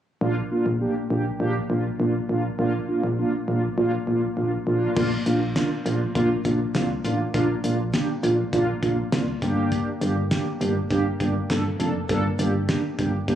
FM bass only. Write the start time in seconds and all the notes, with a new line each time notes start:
0.21 A#1
0.66 A#1
1.10 A#1
1.40 A#1
1.70 A#1
2.00 A#1
2.29 A#1
2.59 A#1
3.04 A#1
3.48 A#1
3.78 A#1
4.07 A#1
4.37 A#1
4.67 A#1
4.96 A#1
5.26 A#1
5.86 A#1
6.15 A#1
6.45 A#1
6.75 C2
7.05 A1
7.34 A#1
7.64 A#1
8.23 A#1
8.53 A#1
8.83 A#1
9.12 C2
9.42 G1
10.01 G1
10.61 G1
10.91 G1
11.20 G1
11.50 G1
11.80 F1
12.09 G1
12.39 G1
12.99 G1
13.28 G1